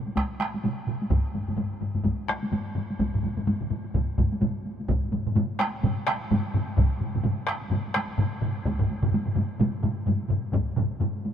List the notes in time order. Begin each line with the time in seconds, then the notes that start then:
0.07 taiko high
0.16 taiko rim, taiko, taiko high
0.40 taiko rim, taiko high
0.54 taiko high
0.64 taiko mid, taiko high
0.87 taiko mid, taiko high
1.02 taiko high
1.10 taiko, taiko low-mid, taiko high
1.34 taiko low-mid, taiko high
1.48 taiko low-mid, taiko high
1.57 taiko low-mid, taiko high
1.81 taiko low-mid, taiko high
1.95 taiko low-mid, taiko high
2.04 taiko, taiko low-mid, taiko high
2.28 taiko rim, taiko high
2.43 taiko high
2.52 taiko low-mid, taiko high
2.76 taiko low-mid, taiko high
2.90 taiko high
2.99 taiko, taiko low-mid, taiko mid, taiko high
3.14 taiko low-mid, taiko mid
3.23 taiko low-mid, taiko mid, taiko high
3.37 taiko low-mid, taiko mid, taiko high
3.47 taiko low-mid, taiko mid, taiko high
3.61 taiko low-mid, taiko mid
3.70 taiko low-mid, taiko mid, taiko high
3.84 taiko high
3.94 taiko, taiko low-mid, taiko mid, taiko high
4.18 taiko, taiko low-mid, taiko mid, taiko high
4.32 taiko high
4.42 taiko low-mid, taiko mid, taiko high
4.65 taiko high
4.80 taiko high
4.89 taiko, taiko low-mid, taiko mid, taiko high
5.12 taiko low-mid, taiko mid, taiko high
5.26 taiko low-mid, taiko mid, taiko high
5.35 taiko low-mid, taiko mid, taiko high
5.50 taiko high
5.59 taiko rim, taiko high
5.74 taiko high
5.83 taiko low-mid, taiko mid, taiko high
5.99 taiko high
6.07 taiko rim, taiko high
6.22 taiko high
6.31 taiko low-mid, taiko mid, taiko high
6.46 taiko high
6.54 taiko low-mid, taiko mid, taiko high
6.69 taiko high
6.77 taiko, taiko low-mid, taiko mid, taiko high
7.01 taiko low-mid, taiko mid, taiko high
7.15 taiko low-mid, taiko mid, taiko high
7.24 taiko low-mid, taiko mid, taiko high
7.39 taiko high
7.47 taiko rim
7.63 taiko high
7.71 taiko low-mid, taiko mid, taiko high
7.86 taiko high
7.94 taiko rim, taiko high
8.10 taiko high
8.18 taiko low-mid, taiko mid, taiko high
8.34 taiko high
8.41 taiko low-mid, taiko mid
8.57 taiko high
8.65 taiko, taiko high
8.79 taiko low-mid, taiko mid
8.90 taiko high
9.03 taiko low-mid, taiko mid, taiko high
9.12 taiko low-mid, taiko mid, taiko high
9.26 taiko low-mid, taiko mid
9.35 taiko low-mid, taiko mid, taiko high
9.52 taiko high
9.59 taiko low-mid, taiko mid, taiko high
9.83 taiko low-mid, taiko mid, taiko high
9.98 taiko high
10.06 taiko low-mid, taiko mid, taiko high
10.21 taiko high
10.29 taiko low-mid, taiko mid, taiko high
10.45 taiko high
10.52 taiko, taiko low-mid, taiko mid, taiko high
10.76 taiko low-mid, taiko mid, taiko high
10.91 taiko high
11.00 taiko low-mid, taiko mid, taiko high
11.16 taiko high
11.25 taiko high